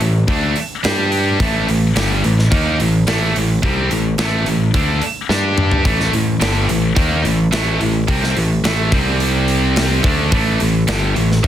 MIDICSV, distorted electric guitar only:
0, 0, Header, 1, 3, 480
1, 0, Start_track
1, 0, Key_signature, 0, "minor"
1, 0, Tempo, 557621
1, 1209, Time_signature, 4, 2, 24, 8
1, 9875, End_track
2, 0, Start_track
2, 0, Title_t, "Distorted electric guitar"
2, 0, Program_c, 0, 30
2, 0, Note_on_c, 0, 45, 62
2, 5, Note_on_c, 0, 52, 60
2, 196, Note_off_c, 0, 45, 0
2, 198, Note_off_c, 0, 52, 0
2, 236, Note_on_c, 0, 50, 84
2, 243, Note_on_c, 0, 57, 87
2, 248, Note_on_c, 0, 62, 98
2, 475, Note_off_c, 0, 50, 0
2, 479, Note_off_c, 0, 57, 0
2, 481, Note_off_c, 0, 62, 0
2, 719, Note_on_c, 0, 55, 87
2, 726, Note_on_c, 0, 62, 90
2, 733, Note_on_c, 0, 67, 99
2, 1198, Note_off_c, 0, 55, 0
2, 1201, Note_on_c, 0, 45, 88
2, 1202, Note_off_c, 0, 62, 0
2, 1205, Note_off_c, 0, 67, 0
2, 1205, Note_on_c, 0, 52, 89
2, 1214, Note_on_c, 0, 57, 92
2, 1436, Note_off_c, 0, 45, 0
2, 1437, Note_off_c, 0, 52, 0
2, 1445, Note_off_c, 0, 57, 0
2, 1447, Note_on_c, 0, 45, 58
2, 1448, Note_on_c, 0, 52, 64
2, 1641, Note_off_c, 0, 45, 0
2, 1641, Note_off_c, 0, 52, 0
2, 1684, Note_on_c, 0, 43, 84
2, 1691, Note_on_c, 0, 50, 94
2, 1697, Note_on_c, 0, 55, 85
2, 1920, Note_off_c, 0, 43, 0
2, 1920, Note_off_c, 0, 50, 0
2, 1922, Note_off_c, 0, 55, 0
2, 1923, Note_on_c, 0, 45, 62
2, 1925, Note_on_c, 0, 52, 62
2, 2119, Note_off_c, 0, 45, 0
2, 2120, Note_off_c, 0, 52, 0
2, 2156, Note_on_c, 0, 51, 90
2, 2162, Note_on_c, 0, 58, 86
2, 2168, Note_on_c, 0, 63, 94
2, 2396, Note_off_c, 0, 51, 0
2, 2399, Note_off_c, 0, 58, 0
2, 2402, Note_off_c, 0, 63, 0
2, 2403, Note_on_c, 0, 45, 61
2, 2408, Note_on_c, 0, 52, 68
2, 2599, Note_off_c, 0, 45, 0
2, 2602, Note_off_c, 0, 52, 0
2, 2641, Note_on_c, 0, 45, 87
2, 2647, Note_on_c, 0, 52, 88
2, 2654, Note_on_c, 0, 57, 95
2, 2876, Note_off_c, 0, 45, 0
2, 2882, Note_off_c, 0, 52, 0
2, 2885, Note_off_c, 0, 57, 0
2, 2886, Note_on_c, 0, 45, 63
2, 2891, Note_on_c, 0, 52, 69
2, 3080, Note_off_c, 0, 45, 0
2, 3082, Note_off_c, 0, 52, 0
2, 3121, Note_on_c, 0, 48, 89
2, 3129, Note_on_c, 0, 55, 99
2, 3134, Note_on_c, 0, 60, 98
2, 3358, Note_off_c, 0, 48, 0
2, 3362, Note_off_c, 0, 55, 0
2, 3364, Note_on_c, 0, 45, 59
2, 3365, Note_off_c, 0, 60, 0
2, 3369, Note_on_c, 0, 52, 66
2, 3559, Note_off_c, 0, 45, 0
2, 3561, Note_off_c, 0, 52, 0
2, 3603, Note_on_c, 0, 45, 81
2, 3609, Note_on_c, 0, 52, 80
2, 3617, Note_on_c, 0, 57, 91
2, 3833, Note_off_c, 0, 45, 0
2, 3839, Note_off_c, 0, 52, 0
2, 3844, Note_on_c, 0, 45, 58
2, 3846, Note_off_c, 0, 57, 0
2, 3849, Note_on_c, 0, 52, 60
2, 4038, Note_off_c, 0, 45, 0
2, 4041, Note_off_c, 0, 52, 0
2, 4080, Note_on_c, 0, 50, 77
2, 4085, Note_on_c, 0, 57, 87
2, 4091, Note_on_c, 0, 62, 93
2, 4315, Note_off_c, 0, 50, 0
2, 4319, Note_off_c, 0, 57, 0
2, 4322, Note_off_c, 0, 62, 0
2, 4559, Note_on_c, 0, 55, 79
2, 4563, Note_on_c, 0, 62, 89
2, 4569, Note_on_c, 0, 67, 87
2, 5035, Note_off_c, 0, 55, 0
2, 5037, Note_off_c, 0, 62, 0
2, 5037, Note_on_c, 0, 45, 76
2, 5040, Note_off_c, 0, 67, 0
2, 5044, Note_on_c, 0, 52, 93
2, 5047, Note_on_c, 0, 57, 91
2, 5261, Note_off_c, 0, 45, 0
2, 5267, Note_off_c, 0, 52, 0
2, 5272, Note_on_c, 0, 45, 60
2, 5277, Note_on_c, 0, 52, 66
2, 5279, Note_off_c, 0, 57, 0
2, 5470, Note_off_c, 0, 45, 0
2, 5473, Note_off_c, 0, 52, 0
2, 5508, Note_on_c, 0, 43, 79
2, 5517, Note_on_c, 0, 50, 89
2, 5524, Note_on_c, 0, 55, 85
2, 5745, Note_off_c, 0, 50, 0
2, 5746, Note_off_c, 0, 55, 0
2, 5748, Note_on_c, 0, 45, 62
2, 5749, Note_off_c, 0, 43, 0
2, 5750, Note_on_c, 0, 52, 62
2, 5948, Note_off_c, 0, 45, 0
2, 5949, Note_off_c, 0, 52, 0
2, 5985, Note_on_c, 0, 51, 88
2, 5990, Note_on_c, 0, 58, 86
2, 5994, Note_on_c, 0, 63, 90
2, 6226, Note_off_c, 0, 51, 0
2, 6229, Note_off_c, 0, 58, 0
2, 6229, Note_on_c, 0, 45, 65
2, 6231, Note_off_c, 0, 63, 0
2, 6232, Note_on_c, 0, 52, 66
2, 6428, Note_off_c, 0, 45, 0
2, 6429, Note_off_c, 0, 52, 0
2, 6470, Note_on_c, 0, 45, 80
2, 6473, Note_on_c, 0, 52, 88
2, 6480, Note_on_c, 0, 57, 88
2, 6704, Note_off_c, 0, 45, 0
2, 6711, Note_off_c, 0, 52, 0
2, 6714, Note_off_c, 0, 57, 0
2, 6715, Note_on_c, 0, 45, 63
2, 6720, Note_on_c, 0, 52, 65
2, 6910, Note_off_c, 0, 45, 0
2, 6913, Note_off_c, 0, 52, 0
2, 6954, Note_on_c, 0, 48, 83
2, 6960, Note_on_c, 0, 55, 97
2, 6968, Note_on_c, 0, 60, 103
2, 7191, Note_off_c, 0, 48, 0
2, 7194, Note_off_c, 0, 55, 0
2, 7197, Note_off_c, 0, 60, 0
2, 7199, Note_on_c, 0, 45, 61
2, 7199, Note_on_c, 0, 52, 66
2, 7392, Note_off_c, 0, 45, 0
2, 7392, Note_off_c, 0, 52, 0
2, 7436, Note_on_c, 0, 45, 89
2, 7440, Note_on_c, 0, 52, 88
2, 7448, Note_on_c, 0, 57, 93
2, 7671, Note_off_c, 0, 45, 0
2, 7673, Note_off_c, 0, 52, 0
2, 7675, Note_on_c, 0, 48, 91
2, 7677, Note_off_c, 0, 57, 0
2, 7682, Note_on_c, 0, 55, 95
2, 7689, Note_on_c, 0, 60, 93
2, 8631, Note_off_c, 0, 48, 0
2, 8634, Note_off_c, 0, 55, 0
2, 8638, Note_off_c, 0, 60, 0
2, 8639, Note_on_c, 0, 50, 83
2, 8644, Note_on_c, 0, 57, 89
2, 8651, Note_on_c, 0, 62, 94
2, 8873, Note_off_c, 0, 50, 0
2, 8876, Note_off_c, 0, 57, 0
2, 8879, Note_off_c, 0, 62, 0
2, 8880, Note_on_c, 0, 45, 87
2, 8886, Note_on_c, 0, 52, 91
2, 8895, Note_on_c, 0, 57, 97
2, 9113, Note_off_c, 0, 45, 0
2, 9117, Note_off_c, 0, 52, 0
2, 9121, Note_off_c, 0, 57, 0
2, 9126, Note_on_c, 0, 45, 60
2, 9131, Note_on_c, 0, 52, 71
2, 9316, Note_off_c, 0, 45, 0
2, 9319, Note_off_c, 0, 52, 0
2, 9360, Note_on_c, 0, 43, 89
2, 9366, Note_on_c, 0, 50, 83
2, 9371, Note_on_c, 0, 55, 91
2, 9594, Note_off_c, 0, 43, 0
2, 9597, Note_off_c, 0, 50, 0
2, 9599, Note_off_c, 0, 55, 0
2, 9604, Note_on_c, 0, 45, 63
2, 9609, Note_on_c, 0, 52, 62
2, 9795, Note_off_c, 0, 45, 0
2, 9798, Note_off_c, 0, 52, 0
2, 9842, Note_on_c, 0, 51, 92
2, 9875, Note_off_c, 0, 51, 0
2, 9875, End_track
3, 0, Start_track
3, 0, Title_t, "Muted distorted electric guitar strokes"
3, 480, Note_on_c, 9, 29, 57
3, 566, Note_off_c, 9, 29, 0
3, 4319, Note_on_c, 9, 29, 58
3, 4405, Note_off_c, 9, 29, 0
3, 9875, End_track
0, 0, End_of_file